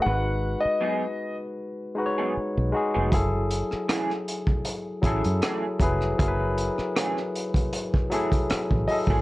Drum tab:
HH |----------------|x-x-x-x-x-xxx-x-|x-x-x-xxx-xxx-o-|
SD |----------------|---rrr------r--r|---rrr------r---|
BD |----------------|o------o--o---o-|o------o-o-o-o-o|